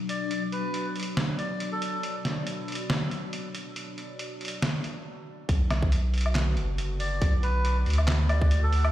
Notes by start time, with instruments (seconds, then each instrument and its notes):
Already playing: synth drone B2 F#3 D4
0.09 melodica D5, closed hi-hat
0.31 closed hi-hat
0.52 melodica B4, closed hi-hat
0.74 closed hi-hat
0.96 closed hi-hat
1.00 closed hi-hat
1.03 closed hi-hat
1.17 snare, closed hi-hat
1.39 melodica D5, closed hi-hat
1.60 closed hi-hat
1.72 melodica A4
1.82 closed hi-hat
2.03 closed hi-hat
2.25 snare, closed hi-hat
2.47 closed hi-hat
2.68 closed hi-hat
2.72 closed hi-hat
2.75 closed hi-hat
2.90 snare, closed hi-hat
3.11 closed hi-hat
3.33 closed hi-hat
3.55 closed hi-hat
3.76 closed hi-hat
3.98 closed hi-hat
4.19 closed hi-hat
4.41 closed hi-hat
4.45 closed hi-hat
4.48 closed hi-hat
4.62 snare, closed hi-hat
4.84 closed hi-hat
5.49 sub bass B1, synth drone D3 B3 F#4, kick, closed hi-hat
5.70 snare, closed hi-hat, low woodblock
5.83 kick
5.92 closed hi-hat
6.14 open hi-hat
6.18 closed hi-hat
6.21 closed hi-hat
6.26 low woodblock
6.35 snare, clap, closed hi-hat
6.57 sub bass F#1, closed hi-hat
6.78 closed hi-hat
7.00 melodica D5, open hi-hat
7.22 sub bass B1, kick, closed hi-hat
7.43 melodica B4, closed hi-hat
7.65 closed hi-hat
7.86 sub bass D2, open hi-hat
7.90 closed hi-hat
7.93 closed hi-hat
7.98 low woodblock
8.08 snare, clap, closed hi-hat
8.29 melodica D5, closed hi-hat, low woodblock
8.42 kick
8.51 closed hi-hat
8.63 melodica A4
8.73 open hi-hat
8.84 low woodblock